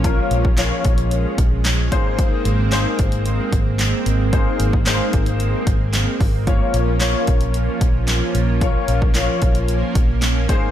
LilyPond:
<<
  \new Staff \with { instrumentName = "Grand piano" } { \time 4/4 \key bes \dorian \tempo 4 = 112 <bes des' f' bes'>4 <bes des' f' des''>4. r4 <bes ees' aes' c''>8~ | <bes ees' aes' c''>8 r8 <bes ees' aes' c''>4. r4. | <bes ees' aes' c''>4 <bes ees' aes' c''>4. r4. | <bes des' f' des''>4 <bes des' f' des''>4. r4. |
<bes des' f' des''>4 <bes des' f' des''>4. r4 <bes ees' aes' c''>8 | }
  \new Staff \with { instrumentName = "Analog synth pad" } { \time 4/4 \key bes \dorian << { <f des'>2.~ <f des'>8 c'8~ | c'1~ | c'1 | <f des'>1~ |
<f des'>2.~ <f des'>8 <aes c'>8 | } \\ { aes2.~ aes8 bes8~ | bes1~ | bes1~ | bes1~ |
bes1 | } >> }
  \new Staff \with { instrumentName = "Fingered electric bass" } { \clef bass \time 4/4 \key bes \dorian bes,,8 bes,,4 bes,,4 bes,,4 aes,,8~ | aes,,8 aes,,4 aes,,4 aes,,4 aes,,8~ | aes,,8 aes,,4 aes,,4 aes,,4 aes,,8~ | aes,,8 bes,,4 bes,,4 bes,,4 bes,,8~ |
bes,,8 bes,,4 bes,,4 bes,,4 aes,,8 | }
  \new DrumStaff \with { instrumentName = "Drums" } \drummode { \time 4/4 <hh bd>8 hh16 bd16 <hc hh sn>8 <hh bd>16 hh16 hh8 <hh bd>8 <hc hh sn>8 <hh bd>8 | <hh bd>8 hh8 <hc hh sn>8 <hh bd>16 hh16 hh8 <hh bd>8 <hc hh sn>8 hh8 | <hh bd>8 hh16 bd16 <hc hh sn>8 <hh bd>16 hh16 hh8 <hh bd>8 <hc hh sn>8 <hho bd>8 | <hh bd>8 hh8 <hc hh sn>8 <hh bd>16 hh16 hh8 <hh bd>8 <hc hh sn>8 hh8 |
<hh bd>8 hh16 bd16 <hc hh sn>8 <hh bd>16 hh16 hh8 <hh bd>8 <hc hh sn>8 <hh bd>8 | }
>>